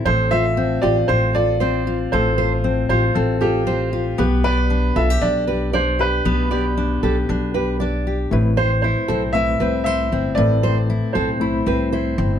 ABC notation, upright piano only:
X:1
M:4/4
L:1/8
Q:"Swing 16ths" 1/4=116
K:Am
V:1 name="Upright piano"
c e2 d c d3 | c3 c A G3 | G B2 e d2 c B- | B6 z2 |
z c c2 e2 e2 | d3 c4 z |]